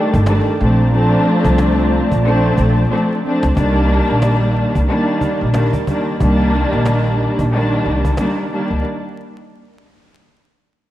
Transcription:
0.00 0.22 D#3 medium
0.00 0.56 D#3 medium
0.00 0.23 G3 medium
0.00 0.23 A3 medium
0.00 0.23 D4 loud
0.00 0.58 A4 medium
0.00 0.58 D5 medium
0.00 0.58 G5 loud
0.14 0.40 G1 loud
0.14 cajon bass loud
0.26 0.58 D#3 medium
0.26 0.58 G3 medium
0.26 0.58 A3 medium
0.26 0.58 D4 medium
0.26 cajon slap medium
0.26 cajon slap loud
0.46 cajon slap soft
0.59 1.13 A#1 loud
0.59 0.90 F3 medium
0.59 0.91 A3 medium
0.59 0.91 C4 medium
0.59 0.91 D4 medium
0.59 3.53 F4 medium
0.59 3.53 D5 medium
0.59 3.53 A5 loud
0.59 3.53 A#5 medium
0.59 cajon slap soft
0.79 cajon slap soft
0.92 2.15 F3 loud
0.92 2.16 A3 loud
0.92 2.16 C4 loud
0.92 2.16 D4 loud
0.92 cajon slap soft
1.12 cajon slap soft
1.27 cajon slap soft
1.45 1.97 C2 loud
1.45 cajon bass loud
1.58 cajon slap loud
1.78 cajon slap soft
1.92 cajon slap soft
2.12 2.49 A#1 medium
2.12 cajon bass medium
2.24 2.86 F3 loud
2.24 2.86 A3 loud
2.24 2.86 C4 loud
2.24 2.86 D4 loud
2.24 cajon slap medium
2.44 cajon slap soft
2.57 2.84 A#1 loud
2.57 cajon bass medium
2.77 cajon slap soft
2.90 3.21 F3 medium
2.90 3.21 A3 medium
2.90 3.22 C4 medium
2.90 3.22 D4 medium
2.90 cajon slap medium
3.10 cajon slap soft
3.23 3.54 F3 medium
3.23 3.54 A3 medium
3.23 3.55 C4 medium
3.23 3.54 D4 loud
3.23 cajon slap soft
3.43 3.54 C#2 loud
3.43 cajon slap loud
3.54 3.98 C2 loud
3.54 4.78 D#3 loud
3.54 4.79 G3 medium
3.54 4.79 A#3 medium
3.54 4.79 D4 loud
3.54 cajon bass loud
3.76 cajon slap soft
3.90 cajon slap soft
4.09 4.62 A#1 medium
4.09 cajon slap soft
4.22 cajon slap medium
4.22 cajon slap loud
4.43 cajon slap soft
4.56 cajon slap soft
4.75 4.86 C2 medium
4.75 cajon bass medium
4.87 5.49 D#3 medium
4.87 5.50 G3 medium
4.87 5.50 A#3 medium
4.87 5.50 D4 loud
4.87 cajon slap soft
5.08 cajon slap soft
5.21 cajon bass medium
5.41 5.67 A#1 medium
5.41 cajon slap soft
5.53 5.85 D#3 medium
5.53 5.85 G3 medium
5.53 5.85 A#3 medium
5.53 5.85 D4 medium
5.53 cajon slap medium
5.53 cajon slap loud
5.73 cajon bass medium
5.87 6.18 D#3 medium
5.87 6.18 G3 medium
5.87 6.18 A#3 medium
5.87 6.19 D4 medium
5.87 cajon bass loud
6.07 cajon slap soft
6.19 6.62 C2 loud
6.19 7.43 D#3 loud
6.19 7.43 G3 loud
6.19 7.43 A#3 loud
6.19 7.43 D4 loud
6.19 cajon bass loud
6.39 cajon slap soft
6.54 cajon slap soft
6.73 7.25 A#1 medium
6.73 cajon slap soft
6.86 cajon slap medium
6.86 cajon slap loud
7.06 cajon slap soft
7.20 cajon slap soft
7.39 7.76 A#1 medium
7.39 cajon bass medium
7.51 8.13 D#3 loud
7.51 8.14 G3 medium
7.51 8.14 A#3 medium
7.51 8.14 D4 loud
7.51 cajon slap soft
7.72 cajon slap soft
7.86 8.12 C2 medium
7.86 cajon slap soft
8.05 cajon bass medium
8.17 8.49 D#3 medium
8.17 8.49 G3 medium
8.17 8.49 A#3 medium
8.17 8.49 D4 medium
8.17 cajon slap medium
8.17 cajon slap loud
8.37 cajon slap soft
8.51 8.82 D#3 medium
8.51 8.82 G3 medium
8.51 8.82 A#3 medium
8.51 8.83 D4 medium
8.51 cajon slap soft
8.70 8.82 C#2 medium
8.70 cajon slap soft

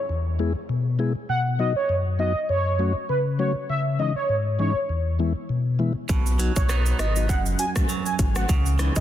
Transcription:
0.00 downlifter medium
0.09 0.55 E2 medium
0.39 0.53 G#3 medium
0.39 0.53 B3 medium
0.39 0.53 E4 medium
0.39 0.53 G#4 medium
0.69 1.15 B2 medium
0.99 1.12 G#3 medium
0.99 1.13 B3 medium
0.99 1.13 E4 medium
0.99 1.13 G#4 medium
1.29 1.75 B2 medium
1.29 1.40 F#5 loud
1.59 1.73 F#3 medium
1.59 1.73 B3 medium
1.59 1.73 D#4 medium
1.59 1.73 F#4 medium
1.59 1.70 D#5 medium
1.76 1.96 C#5 medium
1.89 2.35 F#2 medium
2.19 2.33 F#3 medium
2.19 2.33 B3 medium
2.19 2.33 D#4 medium
2.19 2.33 F#4 medium
2.19 2.39 D#5 medium
2.49 2.95 F#2 medium
2.49 2.93 C#5 loud
2.79 2.93 F#3 medium
2.79 2.93 A3 medium
2.79 2.93 C#4 medium
2.79 2.93 F#4 medium
3.09 3.55 C#3 medium
3.09 3.20 B4 medium
3.39 3.52 F#3 medium
3.39 3.53 A3 medium
3.39 3.53 C#4 medium
3.39 3.53 F#4 medium
3.39 3.50 C#5 medium
3.69 4.15 C#3 medium
3.69 3.80 E5 loud
3.99 4.13 E3 medium
3.99 4.13 G#3 medium
3.99 4.13 C#4 medium
3.99 4.13 D#4 medium
3.99 4.10 D#5 medium
4.16 4.36 C#5 medium
4.29 4.75 G#2 medium
4.59 4.72 E3 medium
4.59 4.73 G#3 medium
4.59 4.73 C#4 medium
4.59 4.73 D#4 medium
4.59 4.79 C#5 medium
4.89 5.35 E2 medium
5.19 5.33 E3 medium
5.19 5.33 G#3 medium
5.19 5.33 B3 medium
5.19 5.33 E4 medium
5.49 5.95 B2 medium
5.79 5.93 E3 medium
5.79 5.93 G#3 medium
5.79 5.93 B3 medium
5.79 5.93 E4 loud
6.09 6.50 B1 loud
6.09 7.29 B2 medium
6.09 kick loud
6.09 shaker medium
6.26 shaker soft
6.26 shaker medium
6.39 6.53 F#3 medium
6.39 6.68 F#3 medium
6.39 6.53 B3 medium
6.39 6.53 D#4 medium
6.39 6.53 F#4 medium
6.39 closed hi-hat medium
6.39 shaker medium
6.56 6.94 B1 loud
6.56 6.76 C#5 medium
6.56 kick loud
6.56 shaker medium
6.69 7.36 F#3 medium
6.69 6.98 B3 medium
6.69 7.37 D#4 medium
6.69 cross-stick medium
6.69 shaker medium
6.86 shaker medium
6.99 7.31 G#1 medium
6.99 7.36 B3 medium
6.99 7.06 D#4 medium
6.99 7.06 F#4 medium
6.99 7.19 D#5 medium
6.99 cross-stick loud
6.99 closed hi-hat medium
6.99 shaker medium
6.99 shaker soft
7.16 7.26 F#3 medium
7.16 7.27 B3 medium
7.16 7.27 D#4 medium
7.16 7.27 F#4 medium
7.16 shaker medium
7.29 7.55 F#1 loud
7.29 8.56 F#2 medium
7.29 7.40 F#5 medium
7.29 kick loud
7.29 shaker medium
7.46 shaker medium
7.59 7.66 C#4 medium
7.59 7.66 F#4 medium
7.59 7.70 G#5 medium
7.59 closed hi-hat medium
7.59 shaker medium
7.76 7.86 F#3 medium
7.76 7.87 A3 medium
7.76 7.87 C#4 medium
7.76 7.87 F#4 medium
7.76 kick medium
7.76 cross-stick medium
7.76 shaker medium
7.89 8.56 F#3 medium
7.89 shaker medium
8.06 8.14 G#5 medium
8.06 shaker medium
8.19 8.45 G#1 loud
8.19 8.26 C#4 medium
8.19 8.26 F#4 medium
8.19 kick loud
8.19 closed hi-hat medium
8.19 shaker medium
8.19 shaker soft
8.36 8.46 F#3 medium
8.36 8.47 A3 medium
8.36 8.47 C#4 medium
8.36 8.47 F#4 medium
8.36 8.45 F#5 medium
8.36 cross-stick medium
8.36 shaker medium
8.49 8.90 C#2 loud
8.49 9.00 C#3 medium
8.49 kick loud
8.49 shaker medium
8.66 shaker soft
8.66 shaker medium
8.79 8.93 E3 medium
8.79 9.00 E3 medium
8.79 8.93 G#3 medium
8.79 8.93 C#4 medium
8.79 8.93 D#4 medium
8.79 cross-stick medium
8.79 closed hi-hat medium
8.79 shaker medium
8.96 9.00 C#2 medium
8.96 9.00 D#5 medium
8.96 kick medium
8.96 shaker medium

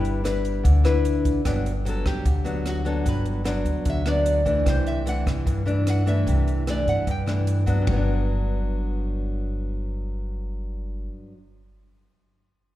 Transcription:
0.00 0.61 G1 medium
0.00 0.63 G3 medium
0.00 0.21 D4 medium
0.00 0.21 E4 medium
0.00 0.22 B4 medium
0.00 1.02 B4 medium
0.05 closed hi-hat soft
0.24 0.81 D4 soft
0.24 0.81 E4 soft
0.24 0.81 B4 medium
0.24 cross-stick soft
0.24 closed hi-hat soft
0.45 closed hi-hat soft
0.64 1.41 D2 medium
0.64 1.42 D3 medium
0.64 kick medium
0.64 closed hi-hat soft
0.84 1.41 D4 medium
0.84 1.42 E4 medium
0.84 1.42 B4 medium
0.84 cross-stick medium
0.84 closed hi-hat soft
1.05 closed hi-hat soft
1.25 kick medium
1.25 closed hi-hat soft
1.45 2.01 G1 medium
1.45 2.23 G2 medium
1.45 1.71 F#3 soft
1.45 1.71 B3 medium
1.45 1.71 D4 medium
1.45 kick medium
1.45 cross-stick medium
1.45 closed hi-hat soft
1.66 closed hi-hat soft
1.85 2.25 F#3 medium
1.85 2.25 B3 soft
1.85 2.25 D4 medium
1.85 2.06 A4 medium
1.85 closed hi-hat soft
2.06 2.15 D2 medium
2.06 2.66 G4 medium
2.06 kick medium
2.06 cross-stick medium
2.06 closed hi-hat soft
2.25 3.01 D2 medium
2.25 3.03 D3 medium
2.25 kick medium
2.25 closed hi-hat soft
2.44 2.82 F#3 medium
2.44 2.82 B3 medium
2.44 2.82 D4 medium
2.44 closed hi-hat soft
2.66 2.86 F#4 medium
2.66 cross-stick medium
2.66 closed hi-hat soft
2.85 3.42 F#3 medium
2.85 3.42 B3 medium
2.85 3.42 D4 medium
2.85 3.05 A4 medium
2.85 closed hi-hat soft
3.04 3.62 G1 medium
3.04 3.83 G2 medium
3.04 kick medium
3.04 closed hi-hat soft
3.08 3.26 B4 medium
3.26 closed hi-hat soft
3.44 4.02 F#3 medium
3.44 4.02 B3 soft
3.44 4.02 D4 medium
3.44 cross-stick medium
3.44 closed hi-hat soft
3.65 3.74 D2 medium
3.65 closed hi-hat soft
3.85 4.62 D2 medium
3.85 4.64 D3 medium
3.85 kick medium
3.85 closed hi-hat soft
3.90 4.07 E5 medium
4.06 4.42 F#3 medium
4.06 4.43 B3 medium
4.06 4.43 D4 medium
4.06 4.63 D5 medium
4.06 cross-stick medium
4.06 closed hi-hat soft
4.26 closed hi-hat soft
4.45 5.02 E3 medium
4.45 5.03 A3 medium
4.45 5.03 D4 medium
4.45 kick soft
4.45 closed hi-hat soft
4.65 5.22 C2 medium
4.65 5.44 C3 medium
4.65 kick medium
4.65 cross-stick medium
4.65 closed hi-hat soft
4.70 4.87 C5 medium
4.86 5.06 E5 medium
4.86 closed hi-hat soft
5.06 5.63 E3 soft
5.06 5.63 A3 soft
5.06 5.63 D4 medium
5.06 5.27 F#5 medium
5.06 closed hi-hat soft
5.26 5.36 G2 medium
5.26 kick medium
5.26 cross-stick medium
5.26 closed hi-hat soft
5.46 6.24 G2 medium
5.46 6.22 G2 medium
5.46 kick medium
5.46 closed hi-hat soft
5.66 6.03 E3 soft
5.66 6.03 A3 medium
5.66 6.03 D4 medium
5.66 closed hi-hat soft
5.87 6.07 F#5 medium
5.87 cross-stick medium
5.87 closed hi-hat soft
6.06 6.63 E3 medium
6.06 6.63 A3 medium
6.06 6.63 D4 medium
6.06 6.63 E5 medium
6.06 closed hi-hat soft
6.27 6.83 C2 medium
6.27 7.05 C3 medium
6.27 kick medium
6.27 closed hi-hat soft
6.48 closed hi-hat soft
6.67 7.07 E3 soft
6.67 7.07 A3 medium
6.67 7.07 D4 medium
6.67 6.88 D5 medium
6.67 cross-stick soft
6.67 closed hi-hat soft
6.87 6.96 G2 medium
6.87 7.07 F#5 medium
6.87 closed hi-hat soft
7.07 7.83 G2 medium
7.07 7.80 G2 soft
7.07 7.21 G5 medium
7.07 kick soft
7.07 closed hi-hat soft
7.26 7.63 E3 soft
7.26 7.64 A3 soft
7.26 7.64 D4 medium
7.26 cross-stick medium
7.26 closed hi-hat soft
7.47 closed hi-hat soft
7.66 7.87 F#3 medium
7.66 7.91 B3 medium
7.66 7.95 D4 medium
7.66 kick soft
7.66 closed hi-hat soft
7.82 11.32 G2 medium
7.87 11.06 G1 medium
7.87 11.38 F#3 medium
7.87 kick medium
7.87 floor tom medium
7.87 ride bell soft
7.93 11.43 B3 medium
7.93 11.46 D4 medium

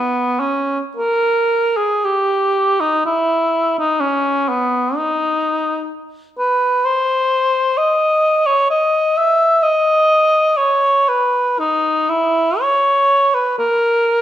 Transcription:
0.00 0.41 B3 soft
0.40 0.80 C#4 soft
0.97 1.78 A#4 medium
1.77 2.06 G#4 soft
2.05 2.82 G4 medium
2.80 3.04 D#4 soft
3.05 3.76 E4 soft
3.78 4.02 D#4 soft
4.00 4.50 C#4 soft
4.49 4.98 B3 soft
4.96 5.91 D#4 medium
6.38 6.87 B4 medium
6.85 7.79 C5 medium
7.78 8.48 D#5 medium
8.46 8.70 C#5 medium
8.70 9.19 D#5 medium
9.17 9.64 E5 medium
9.63 10.58 D#5 medium
10.57 11.10 C#5 medium
11.08 11.61 B4 medium
11.59 12.11 D#4 medium
12.09 12.62 E4 medium
12.61 13.36 C#5 medium
13.34 13.58 B4 medium
13.58 14.22 A#4 medium

